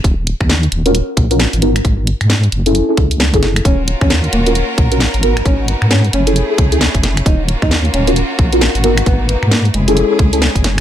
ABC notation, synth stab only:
X:1
M:4/4
L:1/16
Q:"Swing 16ths" 1/4=133
K:Ebm
V:1 name="Synth stab"
z6 z [DFGB] z3 [DFGB] z2 [CEGB] z | z6 z [D_FA=A]2 [DF_A=A] z3 [DF_A=A]3 | z6 z [DFGB] z3 [DFGB] z2 [CEGB] z | z6 z [D_FA=A]2 [DF_A=A] z [DF_A=A] z4 |
z6 z [DFGB] z3 [DFGB] z2 [CEGB] z | z6 z [D_FA=A]2 [DF_A=A] z [DF_A=A] z4 |]